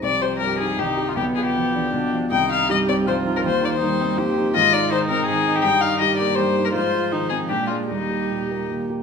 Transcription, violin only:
X:1
M:3/4
L:1/16
Q:1/4=160
K:Cm
V:1 name="Violin"
d2 c2 B2 A2 G3 F | G2 A G6- G z2 | g2 f2 e2 d2 c3 B | c2 d c6- c z2 |
[K:Eb] e2 d2 c2 B2 A3 G | g2 f2 e2 d2 c3 B | c6 A2 G2 F2 | E8 z4 |]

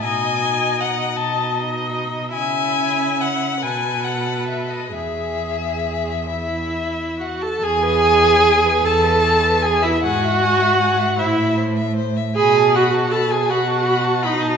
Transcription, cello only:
X:1
M:6/8
L:1/16
Q:3/8=51
K:E
V:1 name="Cello" clef=bass
B,,6 B,,6 | C,6 B,,6 | E,,8- E,,3 z | E,,6 E,,6 |
G,,6 A,,6 | B,,6 B,,6 |]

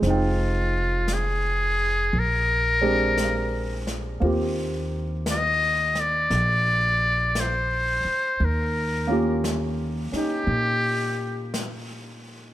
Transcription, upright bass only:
X:1
M:4/4
L:1/8
Q:"Swing" 1/4=58
K:Eb
V:1 name="Upright bass" clef=bass
F,,,4 B,,,4 | E,,4 B,,,3 z | E,,3 z B,,4 |]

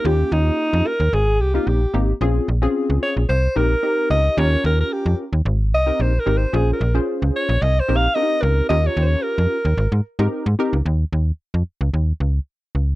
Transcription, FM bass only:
X:1
M:4/4
L:1/16
Q:1/4=111
K:Ab
V:1 name="FM bass" clef=bass
E,,2 E,,2 z F,, z E,, A,,,2 C,,2 B,,,2 A,,,2 | B,,,2 B,,,2 z D,, z B,,, C,,2 B,,,2 z2 D,,2 | E,,2 E,,2 z F,, z E,, A,,,2 C,,2 B,,,2 A,,,2 | B,,,2 B,,,2 z D,, z B,,, C,,2 B,,,2 z2 D,,2 |
E,,2 E,,2 z F,, z E,, A,,, A,, z A,, z A,, z D,, | E,,2 E,,2 z F,, z D,, E,,2 D,,2 z2 D,,2 |]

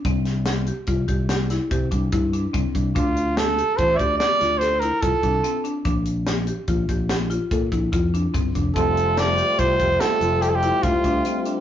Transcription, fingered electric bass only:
X:1
M:7/4
L:1/16
Q:1/4=145
K:F
V:1 name="Fingered electric bass" clef=bass
C,,8 C,,2 C,,6 C,2 C,,2 G,,4 C,, z C,,2 | D,,8 A,,,2 D,,2 z2 D,,6 C,, z C,,2 z4 | B,,,8 B,,,2 B,,,6 B,,2 B,,,2 F,,4 G,,,2 F,,,2 | F,,,8 C,,2 F,,,2 z2 F,,,6 D,, z D,,2 z4 |]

